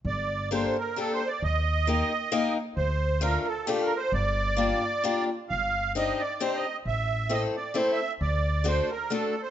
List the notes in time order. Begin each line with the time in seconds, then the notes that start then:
0.05 G1 D5
0.51 A#3 D4 G4 A4 C5
0.78 A#4
0.96 A#3 D4 G4 A4
1.13 C5
1.27 D5
1.42 D#2 D#5
1.87 A#3 D#4 G4 A#4
2.32 A#3 D#4 G4 A#4
2.77 D2 C5
3.21 A3 D4 F4 A4 A#4
3.46 A4
3.66 A3 D4 F4 G4 A4
3.83 A#4
3.97 C5
4.12 G1 D5
4.57 A#3 D4 F4 G4
5.04 A#3 D4 F4 G4
5.49 G1 F5
5.95 C4 D4 D#4 G4 D#5
6.20 D5
6.40 C4 D4 D#4 G4 C5
6.55 D#5
6.85 A1 E5
7.29 A3 C4 E4 A4 D#5
7.56 D5
7.74 A3 C4 E4 A4 C5
7.92 E5
8.21 D2 D5
8.64 A3 D4 F#4 A4 C5
8.91 A#4
9.10 A3 D4 F#4 A4
9.42 C5